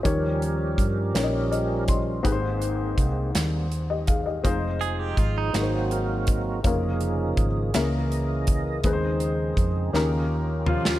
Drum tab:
HH |x-x-x-x-x-x-|x-x-x-x-x-x-|x-x-x-x-x-x-|x-x-x-x-x-x-|
SD |------o-----|------o-----|------o-----|------o-----|
FT |------------|------------|------------|------------|
BD |o---o-----o-|o---o-----o-|o---o-----o-|o---o-----o-|

HH |x-x-x-------|
SD |------o----o|
FT |----------o-|
BD |o---o-------|